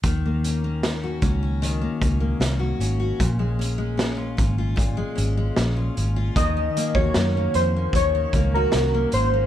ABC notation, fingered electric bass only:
X:1
M:4/4
L:1/16
Q:1/4=76
K:Ebdor
V:1 name="Fingered electric bass" clef=bass
E,,6 D,,4 D,,2 C,,2 A,,,2 | B,,,6 A,,,4 A,,,2 B,,,2 A,,,2 | E,,2 z E,, G,,2 F,,2 E,,2 D,,2 C,,2 A,,,2 |]